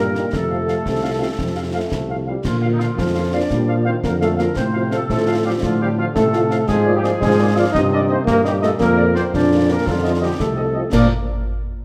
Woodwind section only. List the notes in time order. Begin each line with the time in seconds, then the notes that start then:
0.00 A#4
0.34 A4
2.44 F4
2.72 D#4
2.80 F4
2.97 F4
3.33 D5
3.86 C5
4.04 A#4
4.22 A4
4.39 A#4
4.57 C5
4.93 A4
5.11 A4
5.46 G4
5.63 F4
5.81 G4
5.99 F4
6.15 A4
6.69 G#4
6.96 G4
7.04 G#4
7.22 G#4
7.57 F5
7.74 D#5
7.93 D5
8.11 C5
8.27 A#4
8.46 G4
8.64 A4
8.81 A#4
9.15 C5
9.34 D5
9.70 A#4
9.87 F4
10.23 G4
10.40 A4
10.93 A#4